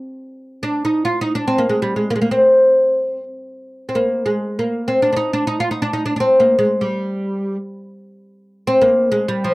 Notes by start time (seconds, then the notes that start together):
0.63 D4
0.85 D#4
1.05 F4
1.21 D#4
1.35 D4
1.48 C4
1.58 A#3
1.69 G#3
1.82 G3
1.96 G#3
2.10 A#3
2.16 G#3
2.22 A#3
2.31 C4
3.89 C4
3.95 A#3
4.26 G#3
4.59 A#3
4.88 C4
5.02 D4
5.13 D4 D#4
5.33 D4
5.47 D#4
5.60 F4
5.71 D#4
5.82 D4
5.93 D#4
6.06 D4
6.16 D4
6.20 C4
6.40 A#3
6.59 G#3
6.81 G3
8.67 C4
8.81 A#3
9.12 G#3
9.28 G3
9.44 F3